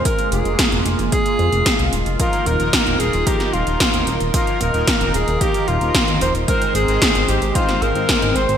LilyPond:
<<
  \new Staff \with { instrumentName = "Alto saxophone" } { \time 4/4 \key f \dorian \tempo 4 = 112 bes'8 aes'4 r8 aes'4. r8 | f'8 bes'4 aes'8 g'8 f'4 r8 | f'8 bes'4 aes'8 g'8 f'4 c''8 | bes'8 aes'4 g'8 f'8 bes'4 c''8 | }
  \new Staff \with { instrumentName = "Analog polysynth" } { \time 4/4 \key f \dorian r1 | <f bes ees' bes'>8. <f bes ees' bes'>8. <f bes ees' bes'>16 r16 <f bes ees' bes'>8. <f bes ees' bes'>8. <f bes ees' bes'>16 r16 | <f bes ees' bes'>8. <f bes ees' bes'>8. <f bes ees' bes'>16 r16 <f bes ees' bes'>8. <f bes ees' bes'>8. <f bes ees' bes'>16 r16 | <aes c' ees' c''>8. <aes c' ees' c''>8. <aes c' ees' c''>16 r16 <aes c' ees' c''>8. <aes c' ees' c''>8. <aes c' ees' c''>16 r16 | }
  \new Staff \with { instrumentName = "Analog synth pad" } { \time 4/4 \key f \dorian << { <aes bes f'>1 | <ees' bes'>1~ | <ees' bes'>1 | <aes c'>1 | } \\ { r1 | ees1~ | ees1~ | ees1 | } >> }
  \new Staff \with { instrumentName = "Analog synth bass" } { \clef bass \time 4/4 \key f \dorian r8 f,,16 f,,16 r16 f,,16 f,,16 f,,16 r8 f,16 f,,16 r16 c,16 ees,,16 f,,16 | r8 ees,,16 ees,,16 r16 ees,,16 ees,,16 ees,,16 r8 ees,,16 ees,,16 r16 ees,16 ees,,16 ees,,16 | r8 ees,,16 ees,,16 r16 ees,,16 ees,,16 ees,,16 r8 ees,,16 ees,,16 r16 ees,16 ees,,16 ees,,16 | r8 aes,,16 aes,,16 r16 aes,,16 aes,,16 aes,,16 r8 aes,,16 aes,,16 r16 aes,16 aes,,16 aes,,16 | }
  \new DrumStaff \with { instrumentName = "Drums" } \drummode { \time 4/4 <hh bd>16 hh16 hh16 hh16 <hh bd sn>16 hh16 hh16 hh16 <hh bd>16 hh16 hh16 hh16 <hh bd sn>16 hh16 hh16 hh16 | <hh bd>16 hh16 hh16 hh16 <hh bd sn>16 hh16 hh16 hh16 <hh bd>16 <hh sn>16 hh16 hh16 <hh bd sn>16 hh16 hh16 hh16 | <hh bd>16 hh16 hh16 hh16 <hh bd sn>16 hh16 hh16 hh16 <hh bd>16 hh16 hh16 hh16 <hh bd sn>16 hh16 hh16 hh16 | <hh bd>16 hh16 hh16 hh16 <hh bd sn>16 hh16 hh16 hh16 <hh bd>16 <hh sn>16 hh16 hh16 <hh bd sn>16 hh16 hh16 hh16 | }
>>